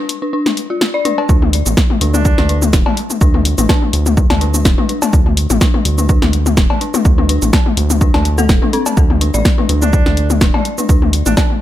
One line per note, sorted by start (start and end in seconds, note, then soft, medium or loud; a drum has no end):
0.09 open hi-hat medium
0.22 0.26 D4 medium
0.33 0.37 D4 medium
0.46 snare medium
0.46 high tom soft
0.57 open hi-hat medium
0.70 0.75 F4 medium
0.81 snare loud
0.81 open hi-hat soft
0.94 0.98 D5 medium
1.05 1.11 D4 loud
1.05 open hi-hat medium
1.05 high tom soft
1.18 1.22 D4 medium
1.18 cowbell medium
1.29 1.63 D2 loud
1.29 1.33 D4 medium
1.29 kick loud
1.29 cabasa soft
1.42 high tom medium
1.53 open hi-hat medium
1.66 1.75 A1 loud
1.66 open hi-hat soft
1.66 high tom soft
1.66 cabasa medium
1.77 kick loud
1.77 snare medium
1.77 cabasa soft
1.90 high tom medium
2.01 2.35 D2 loud
2.01 2.07 D4 medium
2.01 open hi-hat medium
2.14 2.62 D4 loud
2.14 2.18 D4 medium
2.14 high tom medium
2.14 cabasa medium
2.25 kick loud
2.25 cabasa soft
2.38 2.75 D2 medium
2.38 2.42 D4 medium
2.38 snare medium
2.38 high tom soft
2.49 2.53 D4 medium
2.49 open hi-hat medium
2.62 high tom medium
2.62 cabasa medium
2.73 2.84 D1 loud
2.73 kick loud
2.73 snare loud
2.73 open hi-hat soft
2.73 cabasa soft
2.86 high tom medium
2.86 cowbell medium
2.97 open hi-hat loud
3.10 high tom soft
3.10 cabasa medium
3.21 3.55 D2 loud
3.21 3.27 D4 medium
3.21 kick loud
3.21 cabasa soft
3.34 3.38 D4 medium
3.34 high tom medium
3.45 open hi-hat loud
3.58 3.67 A1 loud
3.58 3.62 D4 medium
3.58 open hi-hat soft
3.58 high tom medium
3.58 cabasa medium
3.69 3.73 D4 medium
3.69 kick loud
3.69 snare loud
3.69 cowbell loud
3.69 cabasa soft
3.82 high tom soft
3.93 4.27 D2 loud
3.93 open hi-hat loud
4.06 high tom medium
4.06 cabasa medium
4.17 kick loud
4.17 cabasa soft
4.30 4.67 D2 medium
4.30 snare medium
4.30 high tom medium
4.30 cowbell loud
4.41 4.47 D4 medium
4.41 open hi-hat loud
4.54 4.58 D4 medium
4.54 high tom soft
4.54 cabasa medium
4.65 4.76 D1 loud
4.65 kick loud
4.65 snare loud
4.65 open hi-hat soft
4.65 cabasa soft
4.78 4.82 D4 medium
4.78 high tom medium
4.89 4.93 D4 medium
4.89 open hi-hat loud
5.02 high tom medium
5.02 cowbell medium
5.02 cabasa medium
5.13 5.47 D2 loud
5.13 kick loud
5.13 cabasa soft
5.26 high tom soft
5.37 open hi-hat loud
5.50 5.59 A1 loud
5.50 open hi-hat soft
5.50 high tom medium
5.50 cabasa medium
5.61 5.67 D4 medium
5.61 kick loud
5.61 snare medium
5.61 cabasa soft
5.74 5.78 D4 medium
5.74 high tom medium
5.85 6.19 D2 loud
5.85 open hi-hat loud
5.98 6.02 D4 medium
5.98 high tom soft
5.98 cabasa medium
6.09 6.13 D4 medium
6.09 kick loud
6.09 cabasa soft
6.22 6.59 D2 medium
6.22 snare medium
6.22 high tom medium
6.33 open hi-hat loud
6.46 high tom medium
6.46 cabasa medium
6.57 6.68 D1 loud
6.57 kick loud
6.57 snare medium
6.57 open hi-hat soft
6.57 cabasa soft
6.70 high tom soft
6.70 cowbell medium
6.81 6.87 D4 medium
6.81 open hi-hat loud
6.94 6.98 D4 medium
6.94 high tom medium
6.94 cabasa soft
7.05 7.39 D2 loud
7.05 kick loud
7.05 cabasa soft
7.18 7.22 D4 medium
7.18 high tom medium
7.29 7.33 D4 medium
7.29 open hi-hat medium
7.42 7.51 A1 loud
7.42 open hi-hat soft
7.42 high tom soft
7.42 cabasa medium
7.53 kick loud
7.53 snare medium
7.53 cowbell medium
7.53 cabasa soft
7.66 high tom medium
7.77 8.11 D2 loud
7.77 open hi-hat loud
7.90 high tom medium
7.90 cabasa medium
8.01 8.07 D4 medium
8.01 kick loud
8.01 cabasa soft
8.14 8.51 D2 medium
8.14 8.18 D4 medium
8.14 snare medium
8.14 high tom soft
8.14 cowbell medium
8.25 open hi-hat loud
8.38 8.43 A4 loud
8.38 high tom medium
8.38 cabasa medium
8.49 8.60 D1 loud
8.49 8.55 A4 medium
8.49 kick loud
8.49 snare medium
8.49 open hi-hat soft
8.49 cabasa soft
8.62 8.66 D4 medium
8.62 high tom medium
8.73 8.77 C4 loud
8.73 open hi-hat loud
8.86 high tom soft
8.86 cowbell medium
8.86 cabasa medium
8.97 9.31 D2 loud
8.97 kick loud
8.97 cabasa soft
9.10 high tom medium
9.21 9.27 D4 medium
9.21 open hi-hat medium
9.34 9.43 A1 loud
9.34 9.36 D5 medium
9.34 open hi-hat soft
9.34 high tom soft
9.34 cabasa soft
9.45 kick loud
9.45 snare medium
9.45 cabasa soft
9.58 9.62 D4 medium
9.58 high tom medium
9.69 10.03 D2 loud
9.69 9.73 D4 medium
9.69 open hi-hat medium
9.82 10.30 D4 medium
9.82 high tom medium
9.82 cabasa medium
9.93 kick loud
9.93 cabasa soft
10.06 10.43 D2 medium
10.06 snare medium
10.06 high tom soft
10.17 open hi-hat medium
10.30 high tom medium
10.30 cabasa medium
10.41 10.52 D1 loud
10.41 10.47 D4 medium
10.41 kick loud
10.41 snare medium
10.41 open hi-hat soft
10.41 cabasa soft
10.54 10.56 D5 medium
10.54 high tom medium
10.54 cowbell medium
10.65 open hi-hat loud
10.78 10.82 D4 medium
10.78 high tom soft
10.78 cabasa medium
10.89 11.23 D2 loud
10.89 10.93 D4 medium
10.89 kick loud
10.89 cabasa soft
11.02 high tom medium
11.13 open hi-hat medium
11.26 11.35 A1 loud
11.26 11.33 D4 medium
11.26 open hi-hat soft
11.26 high tom medium
11.26 cabasa medium
11.37 11.45 D4 medium
11.37 kick loud
11.37 snare medium
11.37 cowbell medium
11.37 cabasa soft
11.50 high tom soft